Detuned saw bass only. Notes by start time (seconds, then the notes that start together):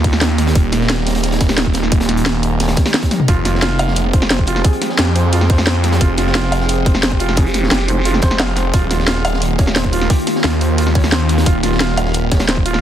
Already playing: D#2
0.55 D#1
1.41 D#1
1.92 D#1
3.28 F1
4.13 F1
4.99 F2
6.01 F1
6.86 F1
8.22 F1
8.74 D#1
9.59 D#1
10.44 D#2
11.46 D#1
12.32 D#1